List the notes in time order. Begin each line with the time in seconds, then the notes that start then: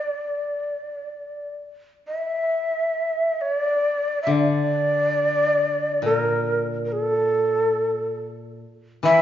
Already playing: D5
2.07 E5
3.41 D5
4.22 E5
4.27 D3
4.32 D5
6.02 A#2 A#4
6.85 A#4
6.92 A4
9.03 E3 E5